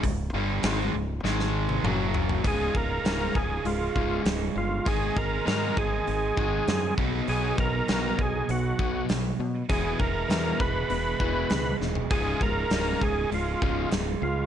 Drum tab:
HH |o---o-----------|o---o---o---o---|o---o---o---o---|o---o---o---o---|
SD |----o---oo------|----o-------o---|----o-------o---|----o-------o---|
T1 |-----------o----|----------------|----------------|----------------|
T2 |------------o---|----------------|----------------|----------------|
FT |--------------oo|----------------|----------------|----------------|
BD |o---------------|o-o---o---o-----|o-o---o---o---o-|--o---o---o-----|

HH |o---o---o---o---|o---o---o---o---|
SD |----o-------o-o-|----o-------o---|
T1 |----------------|----------------|
T2 |----------------|----------------|
FT |---------------o|----------------|
BD |o-o---o---o-----|o-o---o---o-----|